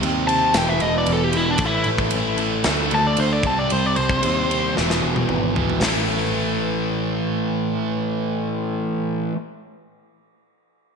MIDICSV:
0, 0, Header, 1, 6, 480
1, 0, Start_track
1, 0, Key_signature, 0, "minor"
1, 0, Tempo, 527704
1, 1456, Time_signature, 4, 2, 24, 8
1, 9967, End_track
2, 0, Start_track
2, 0, Title_t, "Lead electric guitar"
2, 0, Program_c, 0, 29
2, 248, Note_on_c, 0, 81, 89
2, 486, Note_off_c, 0, 81, 0
2, 520, Note_on_c, 0, 79, 84
2, 626, Note_off_c, 0, 79, 0
2, 626, Note_on_c, 0, 76, 79
2, 743, Note_off_c, 0, 76, 0
2, 743, Note_on_c, 0, 75, 77
2, 857, Note_off_c, 0, 75, 0
2, 890, Note_on_c, 0, 74, 79
2, 991, Note_off_c, 0, 74, 0
2, 1026, Note_on_c, 0, 69, 85
2, 1128, Note_off_c, 0, 69, 0
2, 1128, Note_on_c, 0, 67, 78
2, 1244, Note_off_c, 0, 67, 0
2, 1244, Note_on_c, 0, 64, 77
2, 1369, Note_off_c, 0, 64, 0
2, 1369, Note_on_c, 0, 62, 77
2, 1470, Note_off_c, 0, 62, 0
2, 1507, Note_on_c, 0, 64, 86
2, 1714, Note_off_c, 0, 64, 0
2, 2679, Note_on_c, 0, 81, 85
2, 2783, Note_off_c, 0, 81, 0
2, 2790, Note_on_c, 0, 74, 77
2, 2898, Note_off_c, 0, 74, 0
2, 2908, Note_on_c, 0, 72, 72
2, 3017, Note_off_c, 0, 72, 0
2, 3026, Note_on_c, 0, 74, 70
2, 3136, Note_off_c, 0, 74, 0
2, 3153, Note_on_c, 0, 81, 85
2, 3259, Note_off_c, 0, 81, 0
2, 3263, Note_on_c, 0, 74, 85
2, 3384, Note_off_c, 0, 74, 0
2, 3384, Note_on_c, 0, 72, 92
2, 3513, Note_off_c, 0, 72, 0
2, 3513, Note_on_c, 0, 74, 75
2, 3605, Note_off_c, 0, 74, 0
2, 3609, Note_on_c, 0, 72, 89
2, 4309, Note_off_c, 0, 72, 0
2, 9967, End_track
3, 0, Start_track
3, 0, Title_t, "Distorted electric guitar"
3, 0, Program_c, 1, 30
3, 0, Note_on_c, 1, 48, 75
3, 0, Note_on_c, 1, 55, 78
3, 0, Note_on_c, 1, 60, 88
3, 235, Note_off_c, 1, 48, 0
3, 236, Note_off_c, 1, 60, 0
3, 247, Note_on_c, 1, 60, 74
3, 248, Note_off_c, 1, 55, 0
3, 269, Note_on_c, 1, 55, 64
3, 284, Note_on_c, 1, 48, 67
3, 478, Note_off_c, 1, 60, 0
3, 489, Note_off_c, 1, 55, 0
3, 497, Note_off_c, 1, 48, 0
3, 4075, Note_on_c, 1, 60, 70
3, 4090, Note_on_c, 1, 55, 57
3, 4108, Note_on_c, 1, 48, 52
3, 4310, Note_off_c, 1, 60, 0
3, 4317, Note_off_c, 1, 55, 0
3, 4321, Note_off_c, 1, 48, 0
3, 9967, End_track
4, 0, Start_track
4, 0, Title_t, "Distorted electric guitar"
4, 0, Program_c, 2, 30
4, 11, Note_on_c, 2, 48, 76
4, 30, Note_on_c, 2, 55, 70
4, 40, Note_on_c, 2, 60, 73
4, 480, Note_off_c, 2, 48, 0
4, 481, Note_on_c, 2, 40, 84
4, 490, Note_off_c, 2, 55, 0
4, 494, Note_off_c, 2, 60, 0
4, 505, Note_on_c, 2, 47, 86
4, 512, Note_on_c, 2, 52, 81
4, 1192, Note_off_c, 2, 52, 0
4, 1193, Note_off_c, 2, 40, 0
4, 1202, Note_on_c, 2, 52, 72
4, 1205, Note_off_c, 2, 47, 0
4, 1216, Note_on_c, 2, 47, 70
4, 1230, Note_on_c, 2, 40, 63
4, 1433, Note_off_c, 2, 47, 0
4, 1435, Note_off_c, 2, 52, 0
4, 1437, Note_on_c, 2, 45, 77
4, 1448, Note_off_c, 2, 40, 0
4, 1459, Note_on_c, 2, 52, 83
4, 1469, Note_on_c, 2, 57, 95
4, 2144, Note_off_c, 2, 57, 0
4, 2150, Note_off_c, 2, 45, 0
4, 2155, Note_on_c, 2, 57, 80
4, 2162, Note_off_c, 2, 52, 0
4, 2172, Note_on_c, 2, 52, 67
4, 2190, Note_on_c, 2, 45, 60
4, 2390, Note_off_c, 2, 57, 0
4, 2399, Note_off_c, 2, 52, 0
4, 2407, Note_off_c, 2, 45, 0
4, 2417, Note_on_c, 2, 50, 80
4, 2431, Note_on_c, 2, 57, 82
4, 2443, Note_on_c, 2, 62, 88
4, 3118, Note_off_c, 2, 50, 0
4, 3122, Note_on_c, 2, 48, 80
4, 3127, Note_off_c, 2, 57, 0
4, 3133, Note_off_c, 2, 62, 0
4, 3138, Note_on_c, 2, 55, 79
4, 3145, Note_on_c, 2, 60, 72
4, 3830, Note_off_c, 2, 48, 0
4, 3841, Note_off_c, 2, 55, 0
4, 3841, Note_on_c, 2, 48, 66
4, 3845, Note_off_c, 2, 60, 0
4, 3856, Note_on_c, 2, 55, 65
4, 3870, Note_on_c, 2, 60, 72
4, 4312, Note_off_c, 2, 48, 0
4, 4319, Note_on_c, 2, 40, 69
4, 4320, Note_off_c, 2, 55, 0
4, 4327, Note_off_c, 2, 60, 0
4, 4336, Note_on_c, 2, 47, 81
4, 4350, Note_on_c, 2, 52, 78
4, 5032, Note_off_c, 2, 40, 0
4, 5035, Note_off_c, 2, 52, 0
4, 5040, Note_off_c, 2, 47, 0
4, 5045, Note_on_c, 2, 52, 75
4, 5057, Note_on_c, 2, 47, 63
4, 5073, Note_on_c, 2, 40, 51
4, 5275, Note_off_c, 2, 52, 0
4, 5281, Note_off_c, 2, 47, 0
4, 5289, Note_off_c, 2, 40, 0
4, 5291, Note_on_c, 2, 45, 68
4, 5309, Note_on_c, 2, 52, 79
4, 5320, Note_on_c, 2, 57, 85
4, 8494, Note_off_c, 2, 45, 0
4, 8512, Note_off_c, 2, 52, 0
4, 8523, Note_off_c, 2, 57, 0
4, 9967, End_track
5, 0, Start_track
5, 0, Title_t, "Picked electric bass"
5, 0, Program_c, 3, 34
5, 31, Note_on_c, 3, 39, 83
5, 473, Note_off_c, 3, 39, 0
5, 501, Note_on_c, 3, 28, 95
5, 724, Note_off_c, 3, 28, 0
5, 746, Note_on_c, 3, 28, 78
5, 966, Note_off_c, 3, 28, 0
5, 980, Note_on_c, 3, 28, 79
5, 1427, Note_off_c, 3, 28, 0
5, 1443, Note_on_c, 3, 33, 95
5, 1673, Note_off_c, 3, 33, 0
5, 1697, Note_on_c, 3, 33, 80
5, 1921, Note_off_c, 3, 33, 0
5, 1947, Note_on_c, 3, 33, 82
5, 2389, Note_off_c, 3, 33, 0
5, 2422, Note_on_c, 3, 38, 87
5, 2642, Note_off_c, 3, 38, 0
5, 2658, Note_on_c, 3, 38, 72
5, 2880, Note_off_c, 3, 38, 0
5, 2898, Note_on_c, 3, 38, 70
5, 3130, Note_on_c, 3, 36, 75
5, 3144, Note_off_c, 3, 38, 0
5, 3356, Note_off_c, 3, 36, 0
5, 3386, Note_on_c, 3, 36, 84
5, 3604, Note_off_c, 3, 36, 0
5, 3620, Note_on_c, 3, 36, 84
5, 3841, Note_off_c, 3, 36, 0
5, 3862, Note_on_c, 3, 39, 75
5, 4307, Note_off_c, 3, 39, 0
5, 4356, Note_on_c, 3, 28, 82
5, 4570, Note_off_c, 3, 28, 0
5, 4581, Note_on_c, 3, 28, 65
5, 4802, Note_off_c, 3, 28, 0
5, 4810, Note_on_c, 3, 32, 67
5, 5261, Note_off_c, 3, 32, 0
5, 5288, Note_on_c, 3, 33, 80
5, 8455, Note_off_c, 3, 33, 0
5, 9967, End_track
6, 0, Start_track
6, 0, Title_t, "Drums"
6, 27, Note_on_c, 9, 51, 77
6, 118, Note_off_c, 9, 51, 0
6, 261, Note_on_c, 9, 51, 62
6, 352, Note_off_c, 9, 51, 0
6, 491, Note_on_c, 9, 51, 84
6, 496, Note_on_c, 9, 38, 109
6, 582, Note_off_c, 9, 51, 0
6, 587, Note_off_c, 9, 38, 0
6, 728, Note_on_c, 9, 51, 54
6, 819, Note_off_c, 9, 51, 0
6, 968, Note_on_c, 9, 51, 66
6, 1059, Note_off_c, 9, 51, 0
6, 1207, Note_on_c, 9, 51, 55
6, 1298, Note_off_c, 9, 51, 0
6, 1436, Note_on_c, 9, 51, 76
6, 1444, Note_on_c, 9, 36, 103
6, 1527, Note_off_c, 9, 51, 0
6, 1535, Note_off_c, 9, 36, 0
6, 1673, Note_on_c, 9, 51, 49
6, 1764, Note_off_c, 9, 51, 0
6, 1805, Note_on_c, 9, 36, 73
6, 1896, Note_off_c, 9, 36, 0
6, 1915, Note_on_c, 9, 51, 75
6, 2006, Note_off_c, 9, 51, 0
6, 2162, Note_on_c, 9, 51, 51
6, 2253, Note_off_c, 9, 51, 0
6, 2400, Note_on_c, 9, 51, 66
6, 2405, Note_on_c, 9, 38, 97
6, 2491, Note_off_c, 9, 51, 0
6, 2496, Note_off_c, 9, 38, 0
6, 2646, Note_on_c, 9, 51, 49
6, 2737, Note_off_c, 9, 51, 0
6, 2881, Note_on_c, 9, 51, 66
6, 2972, Note_off_c, 9, 51, 0
6, 3121, Note_on_c, 9, 51, 52
6, 3123, Note_on_c, 9, 36, 86
6, 3212, Note_off_c, 9, 51, 0
6, 3214, Note_off_c, 9, 36, 0
6, 3366, Note_on_c, 9, 51, 74
6, 3457, Note_off_c, 9, 51, 0
6, 3604, Note_on_c, 9, 51, 50
6, 3695, Note_off_c, 9, 51, 0
6, 3724, Note_on_c, 9, 36, 63
6, 3815, Note_off_c, 9, 36, 0
6, 3846, Note_on_c, 9, 51, 76
6, 3936, Note_off_c, 9, 51, 0
6, 4102, Note_on_c, 9, 51, 55
6, 4193, Note_off_c, 9, 51, 0
6, 4340, Note_on_c, 9, 38, 52
6, 4431, Note_off_c, 9, 38, 0
6, 4459, Note_on_c, 9, 38, 49
6, 4550, Note_off_c, 9, 38, 0
6, 4694, Note_on_c, 9, 48, 63
6, 4785, Note_off_c, 9, 48, 0
6, 4811, Note_on_c, 9, 47, 62
6, 4901, Note_off_c, 9, 47, 0
6, 5059, Note_on_c, 9, 43, 74
6, 5150, Note_off_c, 9, 43, 0
6, 5180, Note_on_c, 9, 43, 63
6, 5271, Note_off_c, 9, 43, 0
6, 5294, Note_on_c, 9, 46, 72
6, 5298, Note_on_c, 9, 38, 89
6, 5385, Note_off_c, 9, 46, 0
6, 5389, Note_off_c, 9, 38, 0
6, 9967, End_track
0, 0, End_of_file